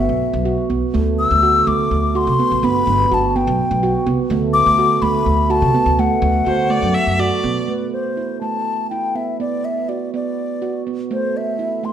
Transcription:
Already playing: handpan B3, flute E5
0.09 upright bass B1
0.33 upright bass B1
0.45 handpan F#4
0.70 upright bass B1, handpan B3
0.94 upright bass D2, handpan A3
1.19 flute E6
1.31 upright bass D2
1.43 handpan F#4
1.67 upright bass D2, handpan A3, flute D6
1.91 upright bass D2
2.15 handpan F#4, flute C6
2.27 upright bass C3
2.40 handpan B3
2.51 upright bass A1
2.63 upright bass G1, handpan B3, flute B5
2.87 upright bass G1
3.11 upright bass G1, handpan F#4, flute A5
3.36 handpan B3, flute G5
3.47 upright bass B1
3.71 upright bass B1
3.83 handpan F#4
4.06 upright bass C2, handpan B3
4.30 upright bass D2, handpan A3
4.53 flute D6
4.66 upright bass D2
4.79 handpan F#4
5.02 upright bass D2, handpan A3, flute B5
5.26 upright bass D2
5.50 handpan F#4, flute A5
5.62 upright bass C3
5.74 handpan B3
5.86 upright bass D2
5.99 handpan A3, flute F#5
6.22 upright bass D2
6.46 upright bass D2, handpan F#4, viola C5
6.70 handpan A3, viola D5
6.82 upright bass F#2
6.94 viola E5
7.07 upright bass F#2
7.19 handpan F#4, viola D5
7.44 upright bass B1, handpan B3
7.68 handpan A3, flute B4
7.93 flute C5
8.17 handpan E4
8.41 handpan A3, flute A5
8.90 handpan E4, flute G5
9.15 handpan B3, flute E5
9.40 handpan B3, flute D5
9.65 flute E5
9.89 handpan F#4, flute D5
10.14 handpan B3, flute D5
10.62 handpan F#4
10.87 handpan B3
11.11 handpan A3, flute C5
11.37 flute E5
11.59 handpan E4
11.83 handpan A3, flute C6

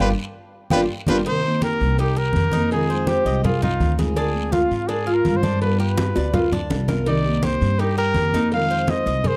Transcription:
0.00 upright bass G1, steel-string acoustic guitar G3 B3 D4, cuban tres D4 F4 G4, violin section D4 F4 G4, trumpet B4
0.70 upright bass G1, steel-string acoustic guitar G3 B3 D4, cuban tres D4 F4 G4, violin section D4 F4 G4, trumpet B4, cowbell, high conga, long guiro
1.07 upright bass G1, steel-string acoustic guitar G3 B3 D4, violin section D4 F4 G4, cuban tres D4 F4 G4, trumpet B4, cowbell, high conga, long guiro
1.25 steel-string acoustic guitar C3 D#3 A#3 C4 G4, cuban tres D#4, trumpet C5, cowbell, high conga, long guiro
1.44 steel-string acoustic guitar D#3 A#3 C4 G4, high conga
1.62 cuban tres G4, trumpet A#4, cowbell, high conga, short guiro
1.80 upright bass C2, high conga, short guiro
1.98 cuban tres D#4, trumpet G4, muted steel-string acoustic guitar stroke, cowbell, high conga, long guiro
2.16 cuban tres G4, trumpet A#4, high conga
2.33 upright bass F2, steel-string acoustic guitar D#3 A#3, cowbell, high conga, short guiro
2.37 steel-string acoustic guitar C4 G4
2.52 steel-string acoustic guitar A#3 C4 G4, cuban tres D#4, cowbell, high conga, short guiro
2.56 steel-string acoustic guitar D#3
2.71 steel-string acoustic guitar C3 D#3 G#3 C4 F4, trumpet G#4, cowbell, high conga, long guiro
2.89 steel-string acoustic guitar D#3 G#3 C4 F4, cuban tres C5, high conga
3.07 trumpet G4, cowbell, high conga, short guiro
3.25 upright bass C2, cuban tres D#5, high conga, short guiro
3.44 trumpet F4, cuban tres G#4, muted steel-string acoustic guitar stroke, cowbell, high conga, low conga, long guiro
3.62 cuban tres D#4, trumpet F4, high conga, low conga
3.80 upright bass D2, steel-string acoustic guitar D#3 G#3 C4 F4, cowbell, high conga, short guiro
3.98 steel-string acoustic guitar D#3 G#3 C4 F4, cuban tres G#4, cowbell, high conga, short guiro
4.16 steel-string acoustic guitar D3 G#3 C4 F4, cuban tres D4, trumpet G#4, cowbell, high conga, long guiro
4.34 steel-string acoustic guitar G#3 C4 F4, high conga
4.52 cuban tres F4, trumpet F4, cowbell, high conga, short guiro
4.71 upright bass G#2, high conga, short guiro
4.88 cuban tres D4, trumpet G#4, muted steel-string acoustic guitar stroke, cowbell, high conga, long guiro
5.07 cuban tres F4, high conga
5.14 trumpet A#4
5.25 upright bass G2, steel-string acoustic guitar D3 G#3 C4 F4, cowbell, high conga, short guiro
5.37 trumpet C5
5.43 steel-string acoustic guitar G#3 C4 F4, cuban tres D4, cowbell, high conga, short guiro
5.61 steel-string acoustic guitar G3 B3 F4, trumpet B4, cowbell, high conga, long guiro
5.79 steel-string acoustic guitar B3 F4, cuban tres G4, trumpet B4, high conga
5.97 cowbell, high bongo, high conga, short guiro
6.16 upright bass D2, cuban tres D5, high bongo, high conga, short guiro
6.34 cuban tres F4, muted steel-string acoustic guitar stroke, cowbell, high bongo, high conga, low conga, long guiro
6.52 cuban tres D4, high conga, low conga
6.70 upright bass C2, steel-string acoustic guitar G3 B3 F4, cowbell, low bongo, high conga, short guiro
6.88 steel-string acoustic guitar B3 F4, cuban tres A#4, cowbell, low bongo, high conga, short guiro
7.06 steel-string acoustic guitar C3 D#3 A#3 C4 G4, cuban tres D#4, trumpet D5, cowbell, high conga, long guiro
7.25 steel-string acoustic guitar D#3 A#3 C4 G4, high conga
7.43 cuban tres G4, trumpet C5, cowbell, high conga, short guiro
7.61 upright bass G2, high conga, short guiro
7.79 cuban tres D#4, trumpet G4, muted steel-string acoustic guitar stroke, cowbell, high conga, long guiro
7.97 cuban tres G4, trumpet A#4, high conga
8.14 upright bass F2, steel-string acoustic guitar D#3 A#3 C4 G4, cowbell, high conga, short guiro
8.34 steel-string acoustic guitar D#3 A#3 C4 G4, cuban tres D#4, cowbell, high conga, short guiro
8.52 steel-string acoustic guitar C3 D#3 G#3 C4 F4, trumpet F5, cowbell, high conga, long guiro
8.69 steel-string acoustic guitar D#3 G#3 C4 F4, cuban tres C5, high conga
8.87 trumpet D#5, cowbell, high conga, short guiro
9.06 upright bass C2, cuban tres D#5, high conga, short guiro
9.24 cuban tres G#4, trumpet C5, muted steel-string acoustic guitar stroke, cowbell, high conga, low conga, long guiro

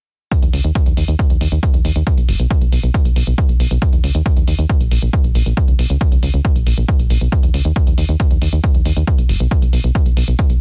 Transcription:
0.32 kick, closed hi-hat
0.42 fm bass D#2, closed hi-hat
0.53 fm bass C#2, open hi-hat
0.64 fm bass D#2, closed hi-hat
0.75 kick, closed hi-hat
0.86 fm bass D#2, closed hi-hat
0.97 fm bass D#2, open hi-hat
1.08 fm bass D#2, closed hi-hat
1.19 kick, closed hi-hat
1.30 fm bass D#2, closed hi-hat
1.41 fm bass D#2, open hi-hat
1.52 fm bass D#2, closed hi-hat
1.63 kick, closed hi-hat
1.74 fm bass D#2, closed hi-hat
1.85 fm bass D#2, open hi-hat
1.96 fm bass D#2, closed hi-hat
2.07 kick, closed hi-hat
2.18 fm bass B1, closed hi-hat
2.29 fm bass F#1, open hi-hat
2.40 fm bass B1, closed hi-hat
2.50 kick, closed hi-hat
2.61 fm bass B1, closed hi-hat
2.72 fm bass B1, open hi-hat
2.83 fm bass B1, closed hi-hat
2.94 kick, closed hi-hat
3.05 fm bass B1, closed hi-hat
3.16 fm bass B1, open hi-hat
3.27 fm bass B1, closed hi-hat
3.38 kick, closed hi-hat
3.49 fm bass B1, closed hi-hat
3.60 fm bass B1, open hi-hat
3.71 fm bass B1, closed hi-hat
3.82 kick, closed hi-hat
3.93 fm bass D#2, closed hi-hat
4.04 fm bass C#2, open hi-hat
4.15 fm bass D#2, closed hi-hat
4.26 kick, closed hi-hat
4.37 fm bass D#2, closed hi-hat
4.48 fm bass D#2, open hi-hat
4.59 fm bass D#2, closed hi-hat
4.69 kick, closed hi-hat
4.81 fm bass A#1, closed hi-hat
4.91 fm bass A#1, open hi-hat
5.02 fm bass A#1, closed hi-hat
5.13 kick, closed hi-hat
5.24 fm bass A#1, closed hi-hat
5.35 fm bass A#1, open hi-hat
5.46 fm bass A#1, closed hi-hat
5.57 kick, closed hi-hat
5.68 fm bass C#2, closed hi-hat
5.79 fm bass B1, open hi-hat
5.90 fm bass C#2, closed hi-hat
6.01 kick, closed hi-hat
6.12 fm bass C#2, closed hi-hat
6.23 fm bass C#2, open hi-hat
6.34 fm bass C#2, closed hi-hat
6.45 kick, closed hi-hat
6.56 fm bass A#1, closed hi-hat
6.67 fm bass A#1, open hi-hat
6.78 fm bass A#1, closed hi-hat
6.88 kick, closed hi-hat
6.99 fm bass A#1, closed hi-hat
7.10 fm bass A#1, open hi-hat
7.21 fm bass B1, closed hi-hat
7.32 kick, closed hi-hat
7.43 fm bass D#2, closed hi-hat
7.54 fm bass C#2, open hi-hat
7.65 fm bass D#2, closed hi-hat
7.76 kick, closed hi-hat
7.87 fm bass D#2, closed hi-hat
7.98 fm bass D#2, open hi-hat
8.09 fm bass D#2, closed hi-hat
8.20 kick, closed hi-hat
8.31 fm bass D#2, closed hi-hat
8.42 fm bass D#2, open hi-hat
8.53 fm bass D#2, closed hi-hat
8.64 kick, closed hi-hat
8.75 fm bass D#2, closed hi-hat
8.85 fm bass D#2, open hi-hat
8.96 fm bass D#2, closed hi-hat
9.07 kick, closed hi-hat
9.18 fm bass B1, closed hi-hat
9.29 fm bass F#1, open hi-hat
9.40 fm bass B1, closed hi-hat
9.51 kick, closed hi-hat
9.62 fm bass B1, closed hi-hat
9.73 fm bass B1, open hi-hat
9.84 fm bass B1, closed hi-hat
9.95 kick, closed hi-hat
10.06 fm bass B1, closed hi-hat
10.17 fm bass B1, open hi-hat
10.28 fm bass B1, closed hi-hat
10.39 kick, closed hi-hat
10.50 fm bass B1, closed hi-hat

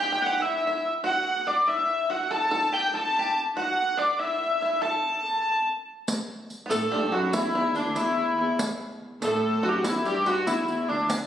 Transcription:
Already playing: hurdy-gurdy G5
0.00 five-string banjo G4
0.12 five-string banjo G4
0.22 hurdy-gurdy F#5
0.26 five-string banjo G4
0.40 five-string banjo E4, hurdy-gurdy E5
0.67 five-string banjo E4
1.04 five-string banjo F#4, hurdy-gurdy F#5
1.47 five-string banjo D4, hurdy-gurdy D5
1.68 five-string banjo E4, hurdy-gurdy E5
2.10 five-string banjo F#4, hurdy-gurdy F#5
2.31 five-string banjo A4, hurdy-gurdy A5
2.51 five-string banjo A4
2.72 five-string banjo G4, hurdy-gurdy G5
2.94 five-string banjo A4, hurdy-gurdy A5
3.19 five-string banjo G4
3.57 five-string banjo F#4, hurdy-gurdy F#5
3.97 five-string banjo D4, hurdy-gurdy D5
4.19 five-string banjo E4, hurdy-gurdy E5
4.60 five-string banjo E4, hurdy-gurdy E5
4.82 five-string banjo A4, hurdy-gurdy A5
6.08 riq
6.50 riq
6.66 five-string banjo B3, hurdy-gurdy A4
6.70 viola da gamba A2, five-string banjo A3, riq
6.91 viola da gamba G2, five-string banjo G3
6.97 viola da gamba A2
7.02 viola da gamba G2
7.12 viola da gamba F#2, five-string banjo F#4, hurdy-gurdy F#4
7.33 viola da gamba E2, hurdy-gurdy E4, five-string banjo E4, riq
7.54 viola da gamba E2, five-string banjo E4
7.75 viola da gamba D2, five-string banjo D4, hurdy-gurdy D4, riq
7.79 viola da gamba E2
7.84 viola da gamba D2
7.95 viola da gamba E2, five-string banjo E4, hurdy-gurdy E4, riq
8.37 viola da gamba E2, hurdy-gurdy E4
8.59 riq
9.21 viola da gamba A2, five-string banjo A3, hurdy-gurdy A4, riq
9.63 viola da gamba F#2, five-string banjo F#4, hurdy-gurdy F#4
9.69 hurdy-gurdy G4
9.74 hurdy-gurdy F#4
9.84 viola da gamba E2, five-string banjo E4, hurdy-gurdy E4, riq
10.05 viola da gamba G2, five-string banjo G3, hurdy-gurdy G4, riq
10.26 five-string banjo F#4, hurdy-gurdy F#4, riq
10.47 viola da gamba E2, hurdy-gurdy E4, five-string banjo E4, riq
10.68 viola da gamba E2, riq
10.88 viola da gamba D2, hurdy-gurdy D4, five-string banjo D4
11.10 riq

